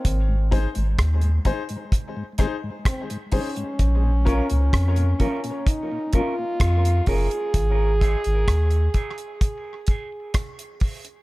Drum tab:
HH |x-xxxxxxx-x-xxox|x-xxxxxxx-x-xxox|x-xxxxxxx-x-xxox|
SD |----r-----r-r---|----r-------r---|----r-------r---|
BD |o-o-o-o-o-o-o-o-|o-o-o-o-o-o-o-o-|o-o-o-o-o-o-o-o-|